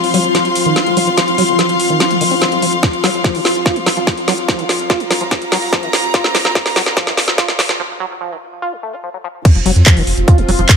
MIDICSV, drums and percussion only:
0, 0, Header, 1, 2, 480
1, 0, Start_track
1, 0, Tempo, 413793
1, 1363, Time_signature, 4, 2, 24, 8
1, 12491, End_track
2, 0, Start_track
2, 0, Title_t, "Drums"
2, 43, Note_on_c, 9, 46, 64
2, 159, Note_off_c, 9, 46, 0
2, 163, Note_on_c, 9, 46, 116
2, 279, Note_off_c, 9, 46, 0
2, 283, Note_on_c, 9, 42, 40
2, 399, Note_off_c, 9, 42, 0
2, 403, Note_on_c, 9, 38, 58
2, 403, Note_on_c, 9, 42, 85
2, 519, Note_off_c, 9, 38, 0
2, 519, Note_off_c, 9, 42, 0
2, 523, Note_on_c, 9, 42, 39
2, 639, Note_off_c, 9, 42, 0
2, 643, Note_on_c, 9, 46, 115
2, 759, Note_off_c, 9, 46, 0
2, 763, Note_on_c, 9, 42, 38
2, 879, Note_off_c, 9, 42, 0
2, 883, Note_on_c, 9, 38, 67
2, 883, Note_on_c, 9, 42, 92
2, 999, Note_off_c, 9, 38, 0
2, 999, Note_off_c, 9, 42, 0
2, 1003, Note_on_c, 9, 42, 38
2, 1119, Note_off_c, 9, 42, 0
2, 1123, Note_on_c, 9, 46, 113
2, 1239, Note_off_c, 9, 46, 0
2, 1243, Note_on_c, 9, 42, 39
2, 1359, Note_off_c, 9, 42, 0
2, 1363, Note_on_c, 9, 38, 67
2, 1363, Note_on_c, 9, 42, 88
2, 1479, Note_off_c, 9, 38, 0
2, 1479, Note_off_c, 9, 42, 0
2, 1483, Note_on_c, 9, 42, 35
2, 1599, Note_off_c, 9, 42, 0
2, 1603, Note_on_c, 9, 46, 114
2, 1719, Note_off_c, 9, 46, 0
2, 1723, Note_on_c, 9, 42, 39
2, 1839, Note_off_c, 9, 42, 0
2, 1843, Note_on_c, 9, 38, 64
2, 1843, Note_on_c, 9, 42, 88
2, 1959, Note_off_c, 9, 38, 0
2, 1959, Note_off_c, 9, 42, 0
2, 1963, Note_on_c, 9, 42, 40
2, 2079, Note_off_c, 9, 42, 0
2, 2083, Note_on_c, 9, 46, 110
2, 2199, Note_off_c, 9, 46, 0
2, 2203, Note_on_c, 9, 42, 39
2, 2319, Note_off_c, 9, 42, 0
2, 2323, Note_on_c, 9, 38, 66
2, 2323, Note_on_c, 9, 42, 86
2, 2439, Note_off_c, 9, 38, 0
2, 2439, Note_off_c, 9, 42, 0
2, 2443, Note_on_c, 9, 42, 38
2, 2559, Note_off_c, 9, 42, 0
2, 2563, Note_on_c, 9, 46, 110
2, 2679, Note_off_c, 9, 46, 0
2, 2683, Note_on_c, 9, 46, 64
2, 2799, Note_off_c, 9, 46, 0
2, 2803, Note_on_c, 9, 38, 73
2, 2803, Note_on_c, 9, 42, 91
2, 2919, Note_off_c, 9, 38, 0
2, 2919, Note_off_c, 9, 42, 0
2, 2923, Note_on_c, 9, 42, 39
2, 3039, Note_off_c, 9, 42, 0
2, 3043, Note_on_c, 9, 46, 111
2, 3159, Note_off_c, 9, 46, 0
2, 3163, Note_on_c, 9, 42, 38
2, 3279, Note_off_c, 9, 42, 0
2, 3283, Note_on_c, 9, 36, 120
2, 3283, Note_on_c, 9, 38, 74
2, 3283, Note_on_c, 9, 42, 88
2, 3399, Note_off_c, 9, 36, 0
2, 3399, Note_off_c, 9, 38, 0
2, 3399, Note_off_c, 9, 42, 0
2, 3403, Note_on_c, 9, 42, 38
2, 3519, Note_off_c, 9, 42, 0
2, 3523, Note_on_c, 9, 38, 80
2, 3523, Note_on_c, 9, 46, 112
2, 3639, Note_off_c, 9, 38, 0
2, 3639, Note_off_c, 9, 46, 0
2, 3643, Note_on_c, 9, 42, 37
2, 3759, Note_off_c, 9, 42, 0
2, 3763, Note_on_c, 9, 36, 121
2, 3763, Note_on_c, 9, 38, 77
2, 3763, Note_on_c, 9, 42, 90
2, 3879, Note_off_c, 9, 36, 0
2, 3879, Note_off_c, 9, 38, 0
2, 3879, Note_off_c, 9, 42, 0
2, 3883, Note_on_c, 9, 46, 64
2, 3999, Note_off_c, 9, 46, 0
2, 4003, Note_on_c, 9, 38, 82
2, 4003, Note_on_c, 9, 46, 106
2, 4119, Note_off_c, 9, 38, 0
2, 4119, Note_off_c, 9, 46, 0
2, 4123, Note_on_c, 9, 42, 38
2, 4239, Note_off_c, 9, 42, 0
2, 4243, Note_on_c, 9, 36, 114
2, 4243, Note_on_c, 9, 38, 80
2, 4243, Note_on_c, 9, 42, 85
2, 4359, Note_off_c, 9, 36, 0
2, 4359, Note_off_c, 9, 38, 0
2, 4359, Note_off_c, 9, 42, 0
2, 4363, Note_on_c, 9, 42, 39
2, 4479, Note_off_c, 9, 42, 0
2, 4483, Note_on_c, 9, 38, 83
2, 4483, Note_on_c, 9, 46, 110
2, 4599, Note_off_c, 9, 38, 0
2, 4599, Note_off_c, 9, 46, 0
2, 4603, Note_on_c, 9, 42, 37
2, 4719, Note_off_c, 9, 42, 0
2, 4723, Note_on_c, 9, 36, 123
2, 4723, Note_on_c, 9, 38, 83
2, 4723, Note_on_c, 9, 42, 90
2, 4839, Note_off_c, 9, 36, 0
2, 4839, Note_off_c, 9, 38, 0
2, 4839, Note_off_c, 9, 42, 0
2, 4843, Note_on_c, 9, 42, 40
2, 4959, Note_off_c, 9, 42, 0
2, 4963, Note_on_c, 9, 38, 88
2, 4963, Note_on_c, 9, 46, 109
2, 5079, Note_off_c, 9, 38, 0
2, 5079, Note_off_c, 9, 46, 0
2, 5083, Note_on_c, 9, 42, 37
2, 5199, Note_off_c, 9, 42, 0
2, 5203, Note_on_c, 9, 36, 117
2, 5203, Note_on_c, 9, 38, 84
2, 5203, Note_on_c, 9, 42, 91
2, 5319, Note_off_c, 9, 36, 0
2, 5319, Note_off_c, 9, 38, 0
2, 5319, Note_off_c, 9, 42, 0
2, 5323, Note_on_c, 9, 42, 39
2, 5439, Note_off_c, 9, 42, 0
2, 5443, Note_on_c, 9, 38, 86
2, 5443, Note_on_c, 9, 46, 101
2, 5559, Note_off_c, 9, 38, 0
2, 5559, Note_off_c, 9, 46, 0
2, 5563, Note_on_c, 9, 42, 38
2, 5679, Note_off_c, 9, 42, 0
2, 5682, Note_on_c, 9, 36, 123
2, 5683, Note_on_c, 9, 38, 86
2, 5683, Note_on_c, 9, 42, 91
2, 5798, Note_off_c, 9, 36, 0
2, 5799, Note_off_c, 9, 38, 0
2, 5799, Note_off_c, 9, 42, 0
2, 5803, Note_on_c, 9, 42, 41
2, 5919, Note_off_c, 9, 42, 0
2, 5923, Note_on_c, 9, 38, 89
2, 5923, Note_on_c, 9, 46, 105
2, 6039, Note_off_c, 9, 38, 0
2, 6039, Note_off_c, 9, 46, 0
2, 6043, Note_on_c, 9, 42, 39
2, 6159, Note_off_c, 9, 42, 0
2, 6162, Note_on_c, 9, 36, 122
2, 6163, Note_on_c, 9, 38, 88
2, 6163, Note_on_c, 9, 42, 92
2, 6278, Note_off_c, 9, 36, 0
2, 6279, Note_off_c, 9, 38, 0
2, 6279, Note_off_c, 9, 42, 0
2, 6283, Note_on_c, 9, 42, 39
2, 6399, Note_off_c, 9, 42, 0
2, 6403, Note_on_c, 9, 38, 93
2, 6403, Note_on_c, 9, 46, 101
2, 6519, Note_off_c, 9, 38, 0
2, 6519, Note_off_c, 9, 46, 0
2, 6523, Note_on_c, 9, 46, 57
2, 6639, Note_off_c, 9, 46, 0
2, 6642, Note_on_c, 9, 36, 115
2, 6643, Note_on_c, 9, 38, 89
2, 6643, Note_on_c, 9, 42, 90
2, 6758, Note_off_c, 9, 36, 0
2, 6759, Note_off_c, 9, 38, 0
2, 6759, Note_off_c, 9, 42, 0
2, 6763, Note_on_c, 9, 42, 40
2, 6879, Note_off_c, 9, 42, 0
2, 6882, Note_on_c, 9, 38, 97
2, 6882, Note_on_c, 9, 46, 107
2, 6998, Note_off_c, 9, 38, 0
2, 6998, Note_off_c, 9, 46, 0
2, 7003, Note_on_c, 9, 42, 39
2, 7119, Note_off_c, 9, 42, 0
2, 7122, Note_on_c, 9, 38, 89
2, 7122, Note_on_c, 9, 42, 96
2, 7123, Note_on_c, 9, 36, 119
2, 7238, Note_off_c, 9, 38, 0
2, 7238, Note_off_c, 9, 42, 0
2, 7239, Note_off_c, 9, 36, 0
2, 7242, Note_on_c, 9, 38, 83
2, 7242, Note_on_c, 9, 42, 41
2, 7358, Note_off_c, 9, 38, 0
2, 7358, Note_off_c, 9, 42, 0
2, 7362, Note_on_c, 9, 38, 97
2, 7362, Note_on_c, 9, 46, 107
2, 7478, Note_off_c, 9, 38, 0
2, 7478, Note_off_c, 9, 46, 0
2, 7482, Note_on_c, 9, 38, 79
2, 7482, Note_on_c, 9, 42, 40
2, 7598, Note_off_c, 9, 38, 0
2, 7598, Note_off_c, 9, 42, 0
2, 7603, Note_on_c, 9, 36, 125
2, 7603, Note_on_c, 9, 38, 96
2, 7603, Note_on_c, 9, 42, 96
2, 7719, Note_off_c, 9, 36, 0
2, 7719, Note_off_c, 9, 38, 0
2, 7719, Note_off_c, 9, 42, 0
2, 7723, Note_on_c, 9, 38, 85
2, 7723, Note_on_c, 9, 46, 60
2, 7839, Note_off_c, 9, 38, 0
2, 7839, Note_off_c, 9, 46, 0
2, 7843, Note_on_c, 9, 38, 99
2, 7843, Note_on_c, 9, 46, 104
2, 7959, Note_off_c, 9, 38, 0
2, 7959, Note_off_c, 9, 46, 0
2, 7963, Note_on_c, 9, 38, 88
2, 7963, Note_on_c, 9, 42, 44
2, 8079, Note_off_c, 9, 38, 0
2, 8079, Note_off_c, 9, 42, 0
2, 8083, Note_on_c, 9, 36, 114
2, 8083, Note_on_c, 9, 38, 94
2, 8083, Note_on_c, 9, 42, 96
2, 8199, Note_off_c, 9, 36, 0
2, 8199, Note_off_c, 9, 38, 0
2, 8199, Note_off_c, 9, 42, 0
2, 8203, Note_on_c, 9, 38, 87
2, 8203, Note_on_c, 9, 42, 43
2, 8319, Note_off_c, 9, 38, 0
2, 8319, Note_off_c, 9, 42, 0
2, 8322, Note_on_c, 9, 38, 101
2, 8322, Note_on_c, 9, 46, 101
2, 8438, Note_off_c, 9, 38, 0
2, 8438, Note_off_c, 9, 46, 0
2, 8442, Note_on_c, 9, 38, 82
2, 8442, Note_on_c, 9, 42, 40
2, 8558, Note_off_c, 9, 38, 0
2, 8558, Note_off_c, 9, 42, 0
2, 8563, Note_on_c, 9, 36, 117
2, 8563, Note_on_c, 9, 38, 105
2, 8563, Note_on_c, 9, 42, 98
2, 8679, Note_off_c, 9, 36, 0
2, 8679, Note_off_c, 9, 38, 0
2, 8679, Note_off_c, 9, 42, 0
2, 8683, Note_on_c, 9, 38, 85
2, 8683, Note_on_c, 9, 42, 41
2, 8799, Note_off_c, 9, 38, 0
2, 8799, Note_off_c, 9, 42, 0
2, 8803, Note_on_c, 9, 38, 103
2, 8803, Note_on_c, 9, 46, 102
2, 8919, Note_off_c, 9, 38, 0
2, 8919, Note_off_c, 9, 46, 0
2, 8923, Note_on_c, 9, 38, 88
2, 8923, Note_on_c, 9, 42, 42
2, 9039, Note_off_c, 9, 38, 0
2, 9039, Note_off_c, 9, 42, 0
2, 10963, Note_on_c, 9, 36, 118
2, 10963, Note_on_c, 9, 42, 97
2, 10963, Note_on_c, 9, 49, 105
2, 11079, Note_off_c, 9, 36, 0
2, 11079, Note_off_c, 9, 42, 0
2, 11079, Note_off_c, 9, 49, 0
2, 11083, Note_on_c, 9, 42, 40
2, 11199, Note_off_c, 9, 42, 0
2, 11203, Note_on_c, 9, 46, 110
2, 11319, Note_off_c, 9, 46, 0
2, 11323, Note_on_c, 9, 42, 40
2, 11439, Note_off_c, 9, 42, 0
2, 11443, Note_on_c, 9, 36, 126
2, 11443, Note_on_c, 9, 39, 127
2, 11443, Note_on_c, 9, 42, 101
2, 11559, Note_off_c, 9, 36, 0
2, 11559, Note_off_c, 9, 39, 0
2, 11559, Note_off_c, 9, 42, 0
2, 11563, Note_on_c, 9, 46, 63
2, 11679, Note_off_c, 9, 46, 0
2, 11683, Note_on_c, 9, 46, 109
2, 11799, Note_off_c, 9, 46, 0
2, 11803, Note_on_c, 9, 42, 43
2, 11919, Note_off_c, 9, 42, 0
2, 11923, Note_on_c, 9, 36, 121
2, 11923, Note_on_c, 9, 42, 92
2, 12039, Note_off_c, 9, 36, 0
2, 12039, Note_off_c, 9, 42, 0
2, 12043, Note_on_c, 9, 42, 42
2, 12159, Note_off_c, 9, 42, 0
2, 12163, Note_on_c, 9, 46, 109
2, 12279, Note_off_c, 9, 46, 0
2, 12283, Note_on_c, 9, 42, 41
2, 12399, Note_off_c, 9, 42, 0
2, 12403, Note_on_c, 9, 36, 124
2, 12403, Note_on_c, 9, 39, 122
2, 12403, Note_on_c, 9, 42, 94
2, 12491, Note_off_c, 9, 36, 0
2, 12491, Note_off_c, 9, 39, 0
2, 12491, Note_off_c, 9, 42, 0
2, 12491, End_track
0, 0, End_of_file